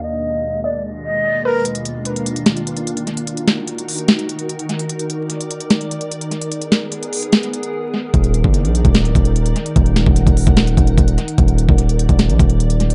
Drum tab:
HH |----------------|xxx-xxxxxxxxxxxx|xxx-xxoxxxxxxxxx|xxx-xxxxxxxxxxxx|
SD |----------------|--------o-------|--o-----o-------|--------o-------|
BD |----------------|----------------|----------------|----------------|

HH |xxx-xxoxxxxx----|xxx-xxxxxxxxxxxx|xxx-xxoxxxxxxxxx|xxx-xxxxxxxxxxxx|
SD |--o-----o-------|--------o-------|--o-----o-------|--------o-------|
BD |----------------|o--o---o--o-----|o--o-o-o--o-o---|o--o---o--o-----|